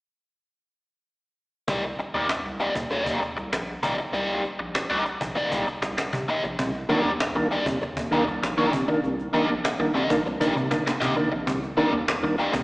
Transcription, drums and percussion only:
1.68 cajon bass
1.83 cajon slap
1.99 cajon slap
2.29 cajon slap
2.60 cajon slap
2.75 cajon bass
2.91 cajon slap
3.06 cajon bass
3.22 cajon slap
3.37 cajon slap
3.53 cajon slap
3.83 cajon bass
3.98 cajon slap
4.13 cajon slap
4.29 cajon slap
4.44 cajon slap
4.75 cajon slap
5.05 cajon slap
5.21 cajon bass
5.36 cajon slap
5.52 cajon bass
5.67 cajon slap
5.82 cajon bass, cajon slap
5.98 cajon slap
6.13 cajon bass
6.28 cajon slap
6.44 cajon slap
6.59 cajon bass
6.74 cajon slap
6.89 cajon slap
7.20 cajon slap
7.51 cajon slap
7.66 cajon bass
7.81 cajon slap
7.97 cajon bass
8.12 cajon slap
8.28 cajon slap
8.43 cajon slap
8.73 cajon bass
9.04 cajon slap
9.19 cajon slap
9.34 cajon slap
9.65 cajon slap
9.95 cajon slap
10.10 cajon bass
10.26 cajon slap
10.41 cajon bass
10.57 cajon slap
10.71 cajon bass, cajon slap
10.87 cajon slap
11.02 cajon bass
11.47 cajon bass
11.63 cajon slap
11.78 cajon slap
12.08 cajon slap
12.38 cajon slap
12.53 cajon bass

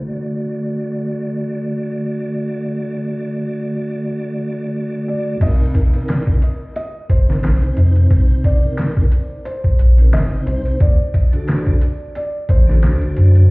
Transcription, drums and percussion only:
5.41 kick, closed hi-hat, crash
5.75 kick, closed hi-hat
5.94 closed hi-hat
6.08 snare, closed hi-hat, darbuka tek
6.27 kick
6.42 closed hi-hat
6.76 closed hi-hat
7.10 kick, closed hi-hat
7.30 snare
7.43 snare, closed hi-hat, darbuka tek
7.62 closed hi-hat
7.77 closed hi-hat
7.96 closed hi-hat
8.11 kick, closed hi-hat
8.44 kick, closed hi-hat
8.77 snare, closed hi-hat, darbuka tek
8.97 kick
9.12 closed hi-hat
9.45 closed hi-hat
9.64 kick
9.79 closed hi-hat
9.98 closed hi-hat
10.13 snare, closed hi-hat, darbuka tek
10.47 closed hi-hat
10.66 closed hi-hat
10.80 kick, closed hi-hat
11.14 kick, closed hi-hat
11.33 closed hi-hat
11.48 snare, closed hi-hat, darbuka tek
11.66 kick
11.81 closed hi-hat
12.15 closed hi-hat
12.49 kick, closed hi-hat
12.69 snare
12.83 snare, closed hi-hat, darbuka tek
13.02 closed hi-hat
13.17 closed hi-hat
13.35 closed hi-hat

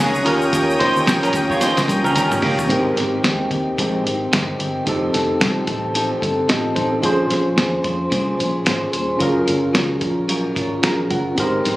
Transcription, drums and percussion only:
0.00 shaker
0.15 shaker
0.26 closed hi-hat
0.42 shaker
0.53 kick, closed hi-hat, shaker
0.70 shaker
0.80 kick, snare, closed hi-hat
0.96 shaker
1.07 snare, closed hi-hat, shaker
1.23 closed hi-hat, shaker
1.33 kick, closed hi-hat, shaker
1.50 kick, shaker
1.61 snare, closed hi-hat, shaker
1.77 snare, closed hi-hat, shaker
1.88 closed hi-hat, high tom, shaker
2.04 high tom, shaker
2.16 closed hi-hat, mid tom, shaker
2.32 mid tom, shaker
2.42 floor tom, open hi-hat
2.59 floor tom, shaker
2.70 kick, closed hi-hat
2.97 snare, closed hi-hat
3.24 snare, closed hi-hat
3.51 kick, closed hi-hat
3.78 kick, closed hi-hat
4.07 closed hi-hat
4.33 snare, closed hi-hat
4.60 closed hi-hat
4.87 kick, closed hi-hat
5.14 snare, closed hi-hat
5.41 snare, closed hi-hat
5.67 kick, closed hi-hat
5.95 closed hi-hat
6.22 kick, closed hi-hat
6.49 snare, closed hi-hat
6.76 kick, closed hi-hat
7.03 kick, closed hi-hat
7.30 snare, closed hi-hat
7.58 snare, closed hi-hat
7.84 kick, closed hi-hat
8.12 kick, closed hi-hat
8.40 closed hi-hat
8.66 snare, closed hi-hat
8.93 closed hi-hat
9.20 kick, closed hi-hat
9.48 closed hi-hat
9.75 snare, closed hi-hat
10.01 kick, closed hi-hat
10.29 closed hi-hat
10.56 kick, closed hi-hat
10.83 snare, closed hi-hat
11.10 kick, closed hi-hat
11.38 kick, closed hi-hat
11.65 snare, closed hi-hat

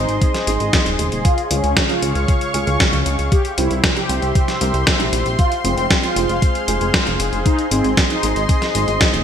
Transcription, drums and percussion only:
0.09 closed hi-hat
0.21 kick, closed hi-hat
0.34 snare, closed hi-hat
0.47 closed hi-hat
0.60 closed hi-hat
0.73 kick, snare, closed hi-hat
0.86 closed hi-hat
0.99 closed hi-hat
1.12 closed hi-hat
1.25 kick, closed hi-hat
1.38 closed hi-hat
1.51 closed hi-hat
1.64 closed hi-hat
1.77 kick, snare, closed hi-hat
1.90 closed hi-hat
2.02 closed hi-hat
2.15 closed hi-hat
2.28 kick, closed hi-hat
2.41 closed hi-hat
2.54 closed hi-hat
2.67 closed hi-hat
2.80 kick, snare, closed hi-hat
2.93 closed hi-hat
3.06 closed hi-hat
3.19 closed hi-hat
3.32 kick, closed hi-hat
3.45 closed hi-hat
3.58 closed hi-hat
3.71 closed hi-hat
3.84 kick, snare, closed hi-hat
3.97 closed hi-hat
4.09 closed hi-hat
4.22 closed hi-hat
4.35 kick, closed hi-hat
4.48 snare, closed hi-hat
4.61 closed hi-hat
4.74 closed hi-hat
4.87 kick, snare, closed hi-hat
5.00 closed hi-hat
5.13 closed hi-hat
5.26 closed hi-hat
5.39 kick, closed hi-hat
5.52 closed hi-hat
5.65 closed hi-hat
5.78 closed hi-hat
5.91 kick, snare, closed hi-hat
6.03 closed hi-hat
6.16 closed hi-hat
6.29 closed hi-hat
6.42 kick, closed hi-hat
6.55 closed hi-hat
6.68 closed hi-hat
6.81 closed hi-hat
6.94 kick, snare, closed hi-hat
7.07 closed hi-hat
7.20 closed hi-hat
7.33 closed hi-hat
7.46 kick, closed hi-hat
7.59 closed hi-hat
7.71 closed hi-hat
7.84 closed hi-hat
7.97 kick, snare, closed hi-hat
8.10 closed hi-hat
8.23 closed hi-hat
8.36 closed hi-hat
8.49 kick, closed hi-hat
8.62 snare, closed hi-hat
8.75 closed hi-hat
8.88 closed hi-hat
9.01 kick, snare, closed hi-hat
9.14 closed hi-hat

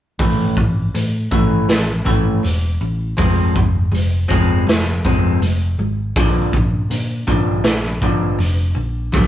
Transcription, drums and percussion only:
0.19 kick, open hi-hat
0.57 kick
0.95 open hi-hat
1.32 kick
1.69 snare, open hi-hat
2.06 kick
2.44 open hi-hat
3.18 kick, open hi-hat
3.56 kick
3.94 open hi-hat
4.31 kick
4.69 snare, open hi-hat
5.05 kick
5.43 open hi-hat
6.16 kick, open hi-hat
6.53 kick
6.91 open hi-hat
7.28 kick
7.64 snare, open hi-hat
8.02 kick
8.40 open hi-hat
9.14 kick, open hi-hat

